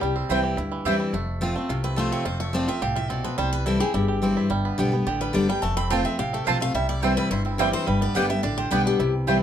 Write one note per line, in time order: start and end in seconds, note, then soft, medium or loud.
0.00 0.22 C2 loud
0.00 0.56 C3 medium
0.00 0.41 G3 medium
0.00 0.14 G4 medium
0.16 0.55 C4 medium
0.29 0.53 C2 medium
0.29 0.57 E3 loud
0.29 0.57 G3 medium
0.29 0.39 C4 medium
0.29 0.57 C4 medium
0.29 0.56 E4 medium
0.29 0.39 E4 medium
0.29 0.58 E4 loud
0.29 0.39 C5 loud
0.29 0.39 G5 medium
0.43 0.83 G4 medium
0.57 0.81 D2 medium
0.57 1.11 G2 medium
0.57 0.97 E4 medium
0.72 1.11 E3 medium
0.85 1.09 E2 medium
0.85 1.13 E3 medium
0.85 1.13 G3 medium
0.85 0.95 C4 medium
0.85 1.14 C4 medium
0.85 1.13 C4 loud
0.85 0.95 E4 loud
0.85 1.14 E4 loud
0.85 0.95 C5 loud
0.85 0.95 G5 loud
1.00 1.14 E4 medium
1.13 1.54 F1 loud
1.13 1.67 F2 medium
1.13 1.53 A3 medium
1.41 1.55 F3 medium
1.41 1.56 A3 loud
1.41 1.84 C4 medium
1.41 1.56 C4 medium
1.41 1.54 F4 loud
1.55 1.95 A3 medium
1.55 1.70 C4 medium
1.55 1.69 F4 medium
1.69 2.10 C2 medium
1.69 2.23 C3 loud
1.69 2.09 F4 medium
1.84 2.12 C4 medium
1.84 1.97 B4 medium
1.96 2.24 F3 medium
1.96 2.37 A3 medium
1.96 2.25 A3 medium
1.96 2.25 C4 medium
1.96 2.25 F4 loud
1.96 2.12 C5 medium
2.12 2.67 C4 medium
2.12 2.25 C#5 medium
2.25 2.66 F1 medium
2.25 2.79 F2 medium
2.25 2.65 F4 medium
2.25 2.40 C5 medium
2.40 2.79 A3 medium
2.40 2.54 C#5 medium
2.53 2.67 F3 loud
2.53 2.93 F3 medium
2.53 2.68 A3 medium
2.53 2.68 C4 loud
2.53 2.67 F4 loud
2.53 2.68 D5 medium
2.68 3.07 C4 medium
2.68 2.83 C4 soft
2.68 2.81 F4 medium
2.68 2.82 E5 loud
2.82 3.22 C2 medium
2.82 3.09 A2 loud
2.82 3.22 G4 medium
2.82 2.96 F5 medium
2.96 3.35 F4 medium
2.96 3.11 E5 medium
3.10 3.37 B2 medium
3.10 3.38 C4 medium
3.10 3.24 D5 medium
3.24 3.38 F3 medium
3.24 3.38 B4 medium
3.38 3.79 C2 loud
3.38 3.91 C3 medium
3.38 3.78 G3 medium
3.38 3.52 C5 medium
3.53 3.66 B4 loud
3.66 3.80 E3 medium
3.66 3.80 G3 loud
3.66 3.81 C4 loud
3.66 3.93 E4 medium
3.66 3.79 E4 loud
3.66 3.80 A4 medium
3.80 3.95 C4 medium
3.80 3.94 E4 medium
3.80 4.07 G4 medium
3.80 3.94 G#4 medium
3.94 4.35 G1 medium
3.94 4.48 G2 medium
3.94 4.34 E4 medium
3.94 4.46 G4 medium
4.08 4.48 G4 medium
4.22 4.49 E3 medium
4.22 4.49 G3 medium
4.22 4.51 C4 medium
4.22 4.49 C4 loud
4.22 4.50 E4 loud
4.37 4.50 E4 medium
4.50 4.71 G1 loud
4.50 5.03 G2 medium
4.50 4.90 G3 medium
4.65 4.92 B3 medium
4.78 5.02 B1 medium
4.78 4.92 D3 loud
4.78 4.92 G3 loud
4.78 4.93 B3 loud
4.78 5.05 G4 medium
4.78 4.91 G4 loud
4.92 5.32 B3 medium
4.92 5.07 B3 medium
4.92 5.05 G4 medium
5.07 5.30 A1 medium
5.07 5.32 D3 loud
5.07 5.46 G4 medium
5.21 5.48 G3 medium
5.21 5.34 B4 medium
5.33 5.58 G1 medium
5.33 5.48 D3 medium
5.33 5.48 G3 medium
5.33 5.48 B3 medium
5.33 5.63 D4 medium
5.33 5.47 G4 loud
5.33 5.48 D5 medium
5.48 5.62 G3 medium
5.48 5.63 B3 soft
5.48 5.62 G4 medium
5.48 5.62 G5 medium
5.62 6.03 F1 medium
5.62 6.16 F2 loud
5.62 6.02 A3 medium
5.62 5.76 A5 loud
5.77 6.04 C4 medium
5.77 5.90 B5 loud
5.90 6.04 F3 medium
5.90 6.05 A3 medium
5.90 6.00 C4 medium
5.90 6.05 C4 loud
5.90 6.00 F4 medium
5.90 6.04 F4 loud
5.90 6.18 G4 medium
5.90 6.00 C5 medium
5.90 6.04 G5 medium
5.90 6.00 A5 medium
6.05 6.44 C4 medium
6.05 6.20 C4 soft
6.05 6.18 F4 medium
6.05 6.18 E5 loud
6.19 6.43 A1 medium
6.19 6.72 C3 medium
6.19 6.58 G4 medium
6.19 6.33 F5 medium
6.33 6.60 A3 medium
6.33 6.48 A4 medium
6.46 6.70 B1 medium
6.46 6.61 F3 medium
6.46 6.61 A3 medium
6.46 6.56 C4 medium
6.46 6.61 C4 medium
6.46 6.56 F4 loud
6.46 6.75 F4 medium
6.46 6.59 F4 loud
6.46 6.56 C5 loud
6.46 6.61 C5 medium
6.46 6.56 A5 loud
6.60 6.75 A3 medium
6.60 6.75 C4 soft
6.60 6.74 F4 medium
6.60 6.74 F5 loud
6.75 7.15 C2 loud
6.75 7.28 C3 medium
6.75 7.17 G3 medium
6.75 6.89 E5 medium
6.89 7.28 E4 medium
6.89 7.03 D5 loud
7.02 7.29 E3 medium
7.02 7.30 G3 loud
7.02 7.12 C4 medium
7.02 7.43 C4 medium
7.02 7.30 C4 loud
7.02 7.12 E4 medium
7.02 7.30 E4 loud
7.02 7.17 C5 medium
7.02 7.12 C5 medium
7.02 7.12 G5 medium
7.17 7.59 G3 medium
7.17 7.30 B4 loud
7.31 7.71 G1 medium
7.31 7.84 G2 loud
7.31 7.71 E4 medium
7.31 7.44 C5 medium
7.45 7.72 C4 medium
7.45 7.58 E4 soft
7.58 7.85 E3 medium
7.58 7.87 G3 medium
7.58 7.86 G3 medium
7.58 7.68 C4 loud
7.58 7.86 C4 loud
7.58 7.68 E4 loud
7.58 7.87 E4 loud
7.58 7.73 G4 medium
7.58 7.69 C5 loud
7.58 7.69 G5 loud
7.73 7.87 C4 medium
7.73 7.87 C5 loud
7.87 8.08 G1 loud
7.87 8.41 G2 medium
7.87 9.27 G3 medium
7.87 8.01 B4 medium
8.01 8.41 B3 medium
8.01 8.15 D5 medium
8.15 8.39 G1 medium
8.15 8.29 D3 loud
8.15 8.29 G3 medium
8.15 8.25 B3 medium
8.15 8.30 B3 loud
8.15 8.42 D4 medium
8.15 8.25 G4 medium
8.15 8.28 G4 loud
8.15 8.25 D5 medium
8.15 8.29 F5 loud
8.15 8.25 G5 medium
8.30 8.44 B3 soft
8.30 8.43 G4 medium
8.30 8.57 G4 medium
8.30 8.43 E5 medium
8.43 8.67 A1 medium
8.43 8.69 D3 medium
8.43 8.83 D4 medium
8.43 8.57 D5 medium
8.58 9.43 G4 medium
8.58 8.71 C5 medium
8.71 8.95 B1 medium
8.71 8.98 D3 medium
8.71 8.98 G3 medium
8.71 8.81 B3 medium
8.71 9.00 B3 medium
8.71 8.99 B3 medium
8.71 8.81 G4 medium
8.71 8.99 G4 loud
8.71 8.85 B4 loud
8.71 8.81 D5 loud
8.71 8.81 G5 loud
8.86 8.99 D4 medium
8.86 9.12 G4 medium
8.99 9.40 C2 medium
8.99 9.43 C3 loud
8.99 9.39 E4 medium
9.27 9.43 E3 medium
9.27 9.43 G3 medium
9.27 9.37 C4 medium
9.27 9.43 C4 medium
9.27 9.37 E4 medium
9.27 9.43 E4 loud
9.27 9.37 C5 medium
9.27 9.37 G5 loud